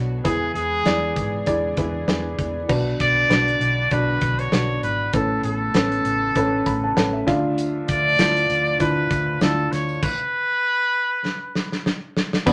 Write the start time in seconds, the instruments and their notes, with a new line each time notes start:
Already playing: fingered electric bass B1, string section D3 F#3 B3 F#4, upright piano D4 F#4 B4 C#5
0.24 fingered electric bass E2, upright piano E3 E4 G#4 B4, string section E3 G#3 G#4, trumpet G#4, kick, closed hi-hat
0.55 fingered electric bass E2, trumpet G#4, closed hi-hat
0.85 fingered electric bass E2, upright piano E4 G#4 D5, snare, closed hi-hat
1.16 fingered electric bass G#2, kick, closed hi-hat
1.46 fingered electric bass E2, upright piano E4 G#4 D5, kick, closed hi-hat
1.77 fingered electric bass E2, upright piano E4 G#4 B4, kick, closed hi-hat
2.07 fingered electric bass E2, upright piano E4 G#4 B4, snare, closed hi-hat
2.39 fingered electric bass E2, kick, closed hi-hat
2.69 fingered electric bass B1, upright piano B2 D4 F#4 B4, string section D3 F#3 B3 F#4, kick, crash
3.00 fingered electric bass B1, trumpet D5, kick, closed hi-hat
3.29 fingered electric bass B1, upright piano D4 F#4 B4, snare, closed hi-hat
3.48 closed hi-hat
3.60 fingered electric bass B1, closed hi-hat
3.91 fingered electric bass B1, upright piano D4 F#4 D5, trumpet B4, kick, closed hi-hat
4.21 fingered electric bass B1, kick, closed hi-hat
4.39 trumpet C#5, closed hi-hat
4.52 fingered electric bass B1, upright piano D4 F#4 B4, snare, closed hi-hat
4.82 fingered electric bass G#1, trumpet B4, closed hi-hat
5.13 fingered electric bass A1, upright piano A2 C#4 A4 B4, string section C#3 A3, trumpet A4, kick, closed hi-hat
5.43 fingered electric bass A1, trumpet A4, closed hi-hat
5.74 fingered electric bass A1, upright piano C#4 A4 B4, snare, closed hi-hat
5.92 closed hi-hat
6.05 fingered electric bass A1, closed hi-hat
6.35 fingered electric bass A1, upright piano C#4 A4 B4, kick, closed hi-hat
6.66 fingered electric bass A1, upright piano B5, kick, closed hi-hat
6.84 upright piano A5
6.96 fingered electric bass A1, upright piano C#4 A4 B4 F#5, snare, closed hi-hat
7.13 upright piano E5
7.27 fingered electric bass D2, upright piano D3 D4 F4 E5 F5, string section D3 F3, kick, snare, closed hi-hat
7.58 closed hi-hat, tambourine
7.88 fingered electric bass D2, trumpet D5, kick, closed hi-hat, tambourine
8.19 fingered electric bass D2, upright piano D4 E4 F4, snare, closed hi-hat, tambourine
8.37 closed hi-hat
8.50 fingered electric bass D2, closed hi-hat, tambourine
8.67 tambourine
8.80 fingered electric bass D2, upright piano D4 E4 F4, trumpet B4, kick, closed hi-hat, tambourine
9.11 fingered electric bass D2, kick, closed hi-hat, tambourine
9.41 fingered electric bass D2, upright piano D4 E4 F4, trumpet A4, snare, closed hi-hat, tambourine
9.72 fingered electric bass D2, trumpet C#5, snare, closed hi-hat, tambourine
9.89 tambourine
10.03 trumpet B4, kick, crash
11.25 snare
11.55 snare
11.72 snare
11.86 snare
12.17 snare
12.33 snare
12.46 fingered electric bass B1, upright piano B2 D4 F#4 B4, clean electric guitar B2 F#3 B3 D4 F#4, string section B4 D5 F#5 D6, kick, crash, tambourine